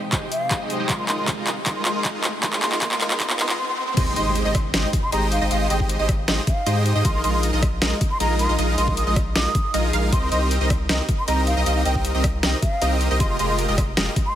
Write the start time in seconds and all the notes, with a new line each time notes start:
Already playing: C3 G#3 G4, riser
0.12 G#3 D#4 G4 C5 D#5, kick, clap, closed hi-hat
0.32 F5, closed hi-hat
0.51 G#3 D#4 G4 C5 D#5, kick, clap, closed hi-hat
0.70 closed hi-hat
0.80 G#3 D#4 G4 C5 D#5
0.89 D#3 G#3 A#3 D#4 F4 G#4 A#4 D#5 C6, kick, clap, closed hi-hat
0.99 C6
1.08 G#3 D#4 F4 A#4 D#5 C6, clap, closed hi-hat
1.18 C6
1.28 kick, clap, closed hi-hat
1.37 G#3 D#4 F4 A#4 D#5
1.47 clap, closed hi-hat
1.66 G#3 D#4 F4 A#4 D#5 C6, kick, clap, closed hi-hat
1.76 C6
1.85 G#3 D#4 F4 A#4 D#5 C6, clap, closed hi-hat
1.95 C6
2.05 kick, clap, closed hi-hat
2.14 G#3 D#4 F4 A#4 D#5
2.24 clap, closed hi-hat
2.43 G#3 D#4 F4 A#4 D#5 C6, kick, clap, closed hi-hat
2.53 C6, clap
2.62 G#3 D#4 F4 A#4 D#5 C6, clap, closed hi-hat
2.72 C6, clap
2.82 G#3 D#4 F4 A#4 D#5 C6, kick, clap, closed hi-hat
2.91 C6, clap
3.01 G#3 D#4 F4 A#4 D#5 C6, clap, closed hi-hat
3.10 C6, clap
3.20 G#3 D#4 F4 A#4 D#5 C6, kick, clap, closed hi-hat
3.29 C6, clap
3.39 G#3 D#4 F4 A#4 D#5 C6, clap, closed hi-hat
3.49 C6, clap
3.58 C6
3.68 C6
3.78 C6
3.87 C6
3.97 G#1 G#3 D#4 G4 C5 D#5 C6, kick, closed hi-hat, crash, impact
4.07 C6
4.16 G#1 G#3 D#4 G4 C5 D#5 C6, closed hi-hat
4.26 C6
4.35 closed hi-hat
4.45 G#1 G#3 D#4 G4 C5 D#5
4.55 kick, cross-stick, closed hi-hat
4.74 G#1 G#3 D#4 G4 C5 D#5, snare, closed hi-hat
4.93 kick, closed hi-hat
5.03 C6
5.12 G#1 G#3 D#4 G4 C5 D#5 A#5, closed hi-hat
5.32 F5, closed hi-hat
5.41 G#1 G#3 D#4 G4 C5 D#5
5.51 G#1 G#3 D#4 G4 C5 D#5 F5, closed hi-hat
5.61 F5
5.70 G#1 G#3 D#4 G4 C5 D#5 G5, closed hi-hat
5.80 G5, kick
5.89 closed hi-hat
5.99 G#1 G#3 D#4 G4 C5 D#5
6.09 kick, cross-stick, closed hi-hat
6.28 G#1 G#3 D#4 G4 C5 D#5, snare, closed hi-hat
6.47 F5, kick, closed hi-hat
6.66 G#2 G#3 D#4 G4 C5 D#5, closed hi-hat
6.86 closed hi-hat
6.95 G#2 G#3 D#4 G4 C5 D#5
7.05 A#1 G#3 D#4 F4 A#4 D#5 C6, kick, closed hi-hat
7.15 C6
7.24 A#1 G#3 D#4 F4 A#4 D#5 C6, closed hi-hat
7.34 C6
7.43 closed hi-hat
7.53 A#1 G#3 D#4 F4 A#4 D#5
7.63 kick, cross-stick, closed hi-hat
7.82 A#1 G#3 D#4 F4 A#4 D#5, snare, closed hi-hat
8.01 kick, closed hi-hat
8.11 C6
8.20 A#1 G#3 D#4 F4 A#4 D#5 A#5, closed hi-hat
8.39 C6, closed hi-hat
8.49 A#1 G#3 D#4 F4 A#4 D#5
8.58 A#1 G#3 D#4 F4 A#4 D#5, closed hi-hat
8.78 A#1 G#3 D#4 F4 A#4 D#5 C6, closed hi-hat
8.88 kick
8.97 D#6, closed hi-hat
9.07 A#1 G#3 D#4 F4 A#4 D#5 D#6
9.16 kick, cross-stick, closed hi-hat
9.35 A#1 G#3 D#4 F4 A#4 D#5 D#6, snare, closed hi-hat
9.55 kick, closed hi-hat
9.74 A#1 G#3 D#4 F4 A#4 D#5, closed hi-hat
9.93 A#1 G#3 D#4 F4 A#4 F5, closed hi-hat
10.12 C2 C4 D#4 G4 A#4 D#5 C6, kick, closed hi-hat
10.22 C6
10.32 C2 C4 D#4 G4 A#4 D#5 C6, closed hi-hat
10.41 C6
10.51 closed hi-hat
10.61 C2 C4 D#4 G4 A#4 D#5
10.70 kick, cross-stick, closed hi-hat
10.89 C2 C4 D#4 G4 A#4 D#5, snare, closed hi-hat
11.09 kick, closed hi-hat
11.19 C6
11.28 C2 C4 D#4 G4 A#4 D#5 A#5, closed hi-hat
11.47 F5, closed hi-hat
11.57 C2 C4 D#4 G4 A#4 D#5
11.66 C2 C4 D#4 G4 A#4 D#5 F5, closed hi-hat
11.76 F5
11.85 C2 C4 D#4 G4 A#4 D#5 G5, closed hi-hat
11.95 G5, kick
12.05 closed hi-hat
12.15 C2 C4 D#4 G4 A#4 D#5
12.24 kick, cross-stick, closed hi-hat
12.43 C2 C4 D#4 G4 A#4 D#5, snare, closed hi-hat
12.62 F5, kick, closed hi-hat
12.82 C2 C4 D#4 G4 A#4 D#5, closed hi-hat
13.01 closed hi-hat
13.11 C2 C4 D#4 G4 A#4 D#5
13.20 F1 G#3 F4 G4 A#4 D#5 C6, kick, closed hi-hat
13.30 C6
13.39 F1 G#3 F4 G4 A#4 D#5 C6, closed hi-hat
13.49 C6
13.59 closed hi-hat
13.68 F1 G#3 F4 G4 A#4 D#5
13.78 kick, cross-stick, closed hi-hat
13.97 F1 G#3 F4 G4 A#4 D#5, snare, closed hi-hat
14.16 kick, closed hi-hat
14.26 C6